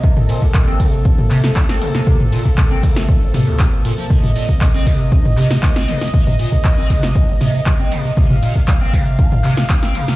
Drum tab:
RD |--x---x---x---x-|--x---x---x---x-|--x---x---x---x-|--x---x---x---x-|
HH |xxoxxxoxxxo-x-o-|xxo-xxoxxxoxx-ox|xxoxxxoxxxoxx-o-|xxoxxxo-xxoxx-ox|
SH |x-xxx-xxx-xxx-xx|x-xxx-xxx-xxx-xx|x-xxx-xxx-xxx-xx|x-xxx-xxx-xxx-xx|
CP |----x-----x-x---|----x-------x---|----x-----x-x---|----x-------x---|
SD |-----------o-o-o|-------o--o-----|-----------o-o-o|-------o--o-----|
T2 |-o-------o------|-o--------o-----|-o-------o------|-o--------o-----|
BD |o--oo-o-o---o---|o--oo-o-o---o---|o--oo-o-o---o---|o--oo-o-o---o---|

RD |--x---x---x---x-|
HH |xxoxxxoxxxo-x-ox|
SH |x-xxx-xxx-xxx-xx|
CP |----x-----x-x---|
SD |-----------o-o-o|
T2 |-o-------o------|
BD |o--oo-o-o---o---|